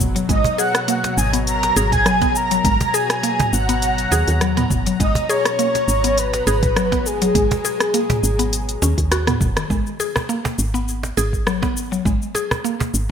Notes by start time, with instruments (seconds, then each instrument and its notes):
Already playing: analog synth pad B2 F#3 G#4, synth pluck B3
0.00 fm bass F#1, kick, mid tom, cabasa
0.16 synth pluck F#3, closed hi-hat, cabasa
0.29 fm bass G#1, synth pluck G#3, soft synth lead D#5, analog synth pad A#5, kick, closed hi-hat, cabasa
0.44 cajon bass, closed hi-hat, cabasa
0.58 synth pluck G#4, soft synth lead F#5, cabasa
0.75 cross-stick, closed hi-hat, cabasa
0.88 synth pluck A#3, closed hi-hat, cabasa
1.04 cajon slap, closed hi-hat, cabasa
1.17 fm bass G#1, soft synth lead G#5, cabasa
1.33 synth pluck B3, closed hi-hat, cabasa
1.47 soft synth lead A#5, closed hi-hat, cabasa
1.63 cajon slap, closed hi-hat, cabasa
1.76 fm bass G#1, synth pluck G#4, cabasa
1.92 soft synth lead G#5, kick, cajon slap, closed hi-hat, mid tom, cabasa
2.06 synth pluck F#3, cross-stick, closed hi-hat, cabasa
2.22 synth pluck B3, kick, cajon slap, closed hi-hat, cabasa
2.36 soft synth lead A#5, cabasa
2.51 synth pluck F#3, closed hi-hat, cabasa
2.65 fm bass G#1, synth pluck G#3, kick, closed hi-hat, cabasa
2.81 cajon bass, closed hi-hat, cabasa
2.94 synth pluck G#4, soft synth lead G#5, cabasa
3.10 cross-stick, closed hi-hat, cabasa
3.23 synth pluck A#3, closed hi-hat, cabasa
3.40 cajon bass, cajon slap, closed hi-hat, mid tom, cabasa
3.53 fm bass G#1, soft synth lead F#5, cabasa
3.69 synth pluck B3, closed hi-hat, cabasa
3.82 closed hi-hat, cabasa
3.98 closed hi-hat, cabasa
4.12 fm bass D#2, synth pluck G#4, cajon slap, cabasa
4.28 fm bass D#2, closed hi-hat, cabasa
4.41 synth pluck F#3, cross-stick, closed hi-hat, cabasa
4.57 synth pluck B3, closed hi-hat, mid tom, cabasa
4.70 fm bass F#1, kick, mid tom, cabasa
4.86 synth pluck F#3, closed hi-hat, cabasa
5.00 fm bass G#1, synth pluck G#3, soft synth lead D#5, kick, closed hi-hat, cabasa
5.15 cajon bass, closed hi-hat, cabasa
5.29 synth pluck G#4, soft synth lead C#5, cabasa
5.45 cross-stick, closed hi-hat, cabasa
5.59 synth pluck A#3, closed hi-hat, cabasa
5.75 cajon slap, closed hi-hat, cabasa
5.88 fm bass G#1, cabasa
6.04 synth pluck B3, closed hi-hat, cabasa
6.18 soft synth lead B4, closed hi-hat, cabasa
6.33 cajon slap, closed hi-hat, cabasa
6.47 fm bass G#1, synth pluck G#4, cabasa
6.63 kick, cajon slap, closed hi-hat, mid tom, cabasa
6.76 synth pluck F#3, cross-stick, closed hi-hat, cabasa
6.92 synth pluck B3, kick, cajon slap, closed hi-hat, cabasa
7.06 soft synth lead G#4, cabasa
7.22 synth pluck F#3, closed hi-hat, cabasa
7.35 fm bass G#1, synth pluck G#3, kick, closed hi-hat, cabasa
7.51 cajon bass, closed hi-hat, cabasa
7.65 synth pluck G#4, cajon slap, cabasa
7.80 cross-stick, closed hi-hat, cabasa
7.94 synth pluck A#3, closed hi-hat, cabasa
8.10 cajon bass, cajon slap, closed hi-hat, mid tom, cabasa
8.23 fm bass G#1, cabasa
8.39 synth pluck B3, closed hi-hat, cabasa
8.53 closed hi-hat, cabasa
8.69 closed hi-hat, cabasa
8.82 fm bass D#2, synth pluck C#4, cajon slap, cabasa
8.98 fm bass D#2, kick, closed hi-hat, cabasa
9.12 synth pluck F#4, cross-stick, closed hi-hat, cabasa
9.27 synth pluck B3, cross-stick, closed hi-hat, mid tom, cabasa
9.41 fm bass F#1, kick, mid tom, cabasa
9.57 synth pluck D#3, cross-stick, closed hi-hat, cabasa
9.70 fm bass G#1, synth pluck G#3, kick, cabasa
9.87 cabasa
10.00 synth pluck G#4, cajon slap, cabasa
10.16 cajon bass, cross-stick, cabasa
10.29 synth pluck A#3, cabasa
10.45 cajon bass, cajon slap, cabasa
10.59 fm bass G#1, cabasa
10.74 synth pluck B3, cabasa
10.88 cabasa
11.03 cajon slap, cabasa
11.17 fm bass G#1, synth pluck G#4, cabasa
11.33 kick, cabasa
11.47 synth pluck F#3, cross-stick, cabasa
11.62 synth pluck B3, kick, cajon slap, cabasa
11.77 cabasa
11.92 synth pluck F#3, cabasa
12.05 fm bass G#1, synth pluck G#3, kick, cabasa
12.22 cabasa
12.35 synth pluck G#4, cajon slap, cabasa
12.51 cajon bass, cross-stick, cabasa
12.64 synth pluck A#3, cabasa
12.80 cajon bass, cajon slap, cabasa
12.94 fm bass G#1, cabasa